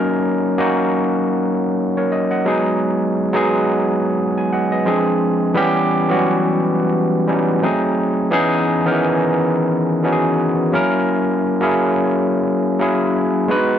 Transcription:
tine electric piano
Already playing: F#3 A#3 C#4 D#4 A#4 C#5
0.58 F#3 A#3 C#4 D#4 F#4
1.97 A#4 C#5
2.12 D#5
2.31 D#5 F#5
2.45 F#3 G#3 B3 D#4 G#4
3.33 F#3 G#3 B3 D#4 G#4
4.38 G#5
4.53 D#5 F#5
4.72 B4 D#5
4.85 F3 G#3 C4 D4 G#4
5.54 E3 G3 B3 C#4 G4
6.08 E3 F#3 B3 C#4 F#4
6.16 G3
7.27 E3 G3 B3 C#4 D#4
7.62 F#3 A3 C4 D#4 G#4
8.31 E3 B3 C#4 D#4 G#4
8.85 D#3 B3 C#4 D#4 A#4
8.91 E3
10.03 E3 B3 C#4 D#4 F#4
10.12 G#4
10.72 F#3 A#3 C#4 E4 A#4
11.60 F#3 A#3 C#4 E4 G#4
12.79 F#3 A#3 C#4 E4 G#4
13.48 G#3 B3 D4 F#4 B4
13.56 D#4

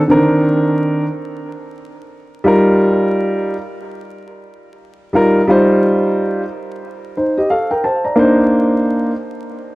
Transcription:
grand piano
0.08 D3 C4 D4 A#4
0.14 D#3
2.44 G3 D#4 F4 A#4
5.13 G3 D#4 F4 A#4
5.47 G3 D#4 F4 C5
7.17 D#4 C5
7.37 G4 D#5
7.50 A4 F5
7.71 A#4 G5
7.84 C5 A5
8.05 D5 A#5
8.16 A#3 D4 D#4 C5

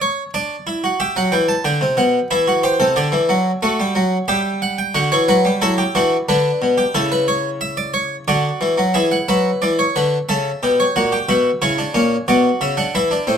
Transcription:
harpsichord
Already playing: C#4
0.02 C#5
0.34 D4 D5
0.67 E4
0.84 F#4
1.00 G4 E5
1.16 F#3 F#5
1.32 E3 G5
1.49 A5
1.65 D3 G5
1.81 C3
1.97 B2 F#5
2.31 E3 E4 E5
2.48 F#4
2.63 G4 C5
2.80 C3 A4
2.96 D3 D5
3.12 E3
3.29 F#3
3.63 A3 F#4
3.80 G3
3.95 F#3
4.28 G3 G4 E5
4.62 F#5
4.78 G5
4.94 D3 F#4 F#5
5.12 E3 C#5
5.28 F#3 B4
5.45 G3
5.61 F#3 E4 A4
5.78 G4
5.95 E3 D4 F#4
6.29 D3 D4 B4
6.62 B2
6.78 G4
6.95 C#3 E4 A4
7.12 B4
7.28 C#5
7.61 E5
7.77 D5
7.94 C#5
8.28 D3 F#4 D5
8.61 E3
8.78 F#3
8.94 E3 G#4 E5
9.11 F#5
9.29 F#3 B4 E5
9.62 E3 D5
9.79 C#5
9.96 D3 B4
10.29 C#3 A4 E5
10.63 B2 G4
10.80 C#5
10.96 A#2 F#4 F#5
11.12 G4
11.29 B2 F#4 E5
11.62 C#3 E4 C#5
11.78 D4
11.94 A#2 C#4
12.28 B2 F#4 D5
12.61 C#3 E5
12.77 D4 F#5
12.95 E3 E4 E5
13.11 D4
13.27 A2 C4

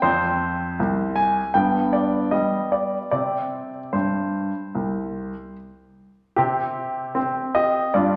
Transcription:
grand piano
0.02 F2 C4 C5
0.80 C2
1.16 G#5
1.54 G2 B3 G5
1.93 D5
2.31 G3 D#5
2.72 D5
3.11 C3 C4 G4 D5
3.93 G2 C5
4.75 C2
6.36 C3 C4 G4
7.15 C4
7.55 G4 D#5
7.94 G2 F4 D5

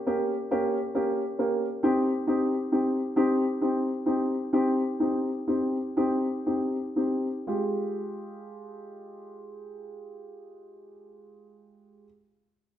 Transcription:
upright piano
0.07 A#3 C#4 G4
0.51 A#3 C#4 G4
0.95 A#3 C#4 G4
1.39 A#3 C#4 G4
1.83 C4 D#4 G4
2.27 C4 D#4 G4
2.72 C4 D#4 G4
3.16 C4 D#4 G4
3.61 C4 D#4 G4
4.06 C4 D#4 G4
4.53 C4 D#4 G4
5.00 C4 D#4 G4
5.48 C4 D#4 G4
5.97 C4 D#4 G4
6.46 C4 D#4 G4
6.96 C4 D#4 G4
7.47 G#3 F4 G4

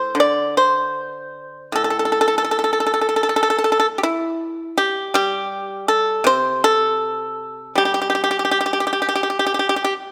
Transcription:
pipa
Already playing: A2 C5
0.15 D3
0.20 D5
0.57 C5
1.72 A2 A4
1.84 A4
1.90 A4
1.99 A4
2.05 A4
2.12 A4
2.21 A4
2.28 A4
2.38 A4
2.44 A4
2.51 A4
2.59 A4
2.64 A4
2.73 A4
2.80 A4
2.87 A4
2.94 A4
3.01 A4
3.09 A4
3.16 A4
3.23 A4
3.29 A4
3.36 A4
3.43 A4
3.50 A4
3.58 A4
3.64 A4
3.72 A4
3.80 A4
3.98 G4
4.03 E4
4.78 G4
5.14 G3 G4
5.88 A4
6.24 C3 C5
6.64 A4
7.75 G3 G4
7.85 G4
7.94 G4
8.02 G4
8.10 G4
8.15 G4
8.24 G4
8.31 G4
8.39 G4
8.45 G4
8.51 G4
8.61 G4
8.66 G4
8.73 G4
8.80 G4
8.87 G4
8.93 G4
9.02 G4
9.09 G4
9.15 G4
9.23 G4
9.30 G4
9.39 G4
9.46 G4
9.54 G4
9.59 G4
9.69 G4
9.76 G4
9.84 G4

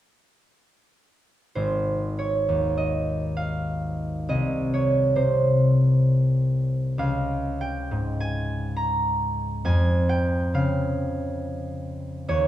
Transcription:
harp
1.55 G#1 C5
2.19 C#5
2.49 D#2
2.77 D#5
3.37 F5
4.29 C2 D#5
4.74 C#5
5.16 C3 C5
6.98 C#2 F5
7.61 G5
7.91 G#2
8.20 G#5
8.76 A#5
9.65 F2 G#5
10.09 G5
10.54 C#3 F5
12.28 D#2 C#5

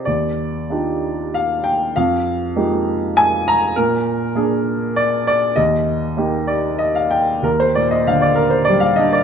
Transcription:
grand piano
0.05 D#2 D5
0.70 D4 D#4 F4 G4
1.34 F5
1.64 G5
1.96 F2 F5
2.56 G#3 A#3 D#4 F4 G4
3.17 G#5
3.48 A#5
3.76 A#2 A#4
4.35 A#3 D4 G#4
4.96 D5
5.27 D5
5.56 D#2 D#5
6.17 A#3 D#4 G4
6.47 D5
6.79 D#5
6.95 F5
7.11 G5
7.42 D#2 A#4
7.60 C5
7.75 A#2 D5
7.91 D#5
8.07 D3 F5
8.22 D5
8.35 A#4
8.50 C5
8.65 G3 D5
8.80 F5
8.96 D4 D#5
9.13 D5

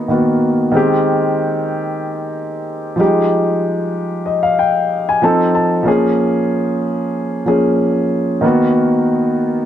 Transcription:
grand piano
Already playing: D#3 A#3 B3 F#4
0.08 D#3 A#3 B3 F#4
0.72 D#3 G#3 C4
0.77 G4
2.96 F3 G3 D#4
3.01 G#3 G4
4.26 D#5
4.43 F5
4.59 G5
5.09 G#5
5.22 F3 C4 D#4 A4 A5
5.55 A5
5.83 F3 A#3 C#4
5.88 G#4
7.46 F3 A#3 C#4 G#4
8.41 D#3 A#3 B3
8.46 F#4

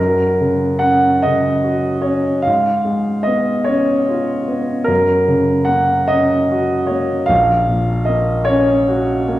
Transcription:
grand piano
Already playing: F#2 A#4
0.41 C#3
0.79 C#4 F#5
1.22 C#3 D#5
1.64 F#4
2.02 C#4 C#5
2.42 F5
2.46 G#2
2.85 G#3
3.23 B3 D#5
3.64 C#4 C#5
4.09 F4
4.48 B3
4.84 F#2 A#4
5.28 C#3
5.65 A#3 F#5
6.08 C#4 D#5
6.52 F#4
6.87 A#3 C#5
7.26 A#1 F5
7.68 A#2
8.05 A#3 D#5
8.45 C#4 C#5
8.88 F#4
9.28 A#3

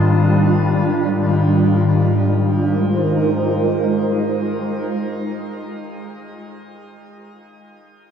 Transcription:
ambient pad
Already playing: G#2 D#3 G3 D4 F4
2.64 G#3 D#4 F4 A#4 C5

